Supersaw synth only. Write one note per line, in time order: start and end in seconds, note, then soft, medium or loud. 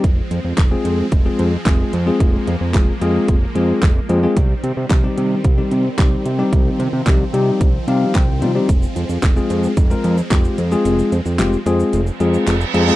0.04 4.32 F3 medium
0.04 4.33 G#3 medium
0.04 2.18 C4 medium
2.20 4.34 A#3 medium
4.37 8.65 D#3 medium
4.37 6.51 G3 medium
4.37 12.96 C4 medium
6.53 12.96 F3 medium
8.69 12.96 G#3 medium